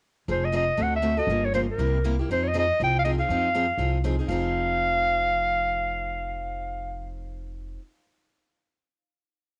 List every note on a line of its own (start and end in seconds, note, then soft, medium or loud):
0.28 0.69 F1 medium
0.28 0.46 F3 medium
0.28 0.47 C4 medium
0.28 0.47 D#4 medium
0.28 0.47 G#4 medium
0.28 0.46 C5 medium
0.45 0.55 D#5 medium
0.52 0.63 F3 medium
0.52 0.64 C4 medium
0.52 0.64 D#4 medium
0.52 0.64 G#4 medium
0.56 0.84 D#5 medium
0.77 1.18 D2 medium
0.77 0.96 D3 medium
0.77 0.96 A3 medium
0.77 0.96 C4 medium
0.77 0.97 F#4 medium
0.77 0.97 A4 medium
0.83 0.95 F#5 medium
0.96 1.20 E5 medium
1.02 1.13 D3 medium
1.02 1.14 A3 medium
1.02 1.13 C4 medium
1.02 1.14 F#4 medium
1.02 1.14 A4 medium
1.17 1.29 C4 soft
1.17 1.29 F#4 soft
1.17 1.28 A4 medium
1.17 1.46 D#5 medium
1.27 1.68 G1 medium
1.27 1.47 C#3 medium
1.27 1.47 F3 medium
1.27 1.48 A#3 medium
1.27 1.48 F4 medium
1.27 1.48 G4 medium
1.45 1.54 C#5 medium
1.54 1.64 C#3 medium
1.54 1.64 F3 medium
1.54 1.65 A#3 medium
1.54 1.65 F4 medium
1.54 1.65 G4 medium
1.54 1.61 C5 medium
1.70 2.16 A#4 medium
1.78 2.19 C2 medium
1.78 1.97 C3 medium
1.78 1.97 G3 medium
1.78 1.97 A#3 medium
1.78 1.98 E4 medium
1.78 1.98 G4 medium
2.04 2.14 C3 medium
2.04 2.15 G3 medium
2.04 2.15 A#3 medium
2.04 2.15 E4 medium
2.04 2.15 G4 medium
2.19 2.30 A#3 soft
2.19 2.30 E4 soft
2.19 2.29 G4 medium
2.29 2.69 F2 medium
2.29 2.48 F3 medium
2.29 2.48 C4 medium
2.29 2.48 D#4 medium
2.29 2.48 G#4 medium
2.29 2.45 C5 medium
2.43 2.49 C#5 medium
2.48 2.57 D#5 medium
2.54 2.64 F3 medium
2.54 2.65 C4 medium
2.54 2.65 D#4 medium
2.54 2.65 G#4 medium
2.59 2.80 D#5 loud
2.80 3.20 C2 medium
2.80 2.98 F3 medium
2.80 2.98 C4 medium
2.80 2.98 D#4 medium
2.80 2.99 G#4 medium
2.80 2.97 G5 medium
2.99 3.02 F5 medium
3.05 3.15 F3 medium
3.05 3.15 C4 medium
3.05 3.15 D#4 medium
3.05 3.15 G#4 medium
3.05 3.11 D#5 medium
3.18 3.29 C4 soft
3.18 3.29 D#4 soft
3.18 3.29 G#4 soft
3.18 4.01 F5 medium
3.29 3.69 F2 medium
3.29 3.48 F3 medium
3.29 3.48 C4 medium
3.29 3.48 D#4 medium
3.29 3.48 G#4 medium
3.54 3.65 F3 medium
3.54 3.65 C4 medium
3.54 3.65 D#4 medium
3.54 3.65 G#4 medium
3.78 4.18 C2 medium
3.78 3.97 F3 medium
3.78 3.97 C4 medium
3.78 3.97 D#4 medium
3.78 3.98 G#4 medium
4.04 4.14 F3 medium
4.04 4.14 C4 medium
4.04 4.15 D#4 medium
4.04 4.15 G#4 medium
4.19 4.29 C4 soft
4.19 4.30 D#4 soft
4.19 4.29 G#4 soft
4.28 7.75 F1 medium
4.28 7.79 F3 medium
4.28 7.80 C4 medium
4.28 7.81 D#4 medium
4.28 7.05 F5 loud
4.32 7.82 G#4 medium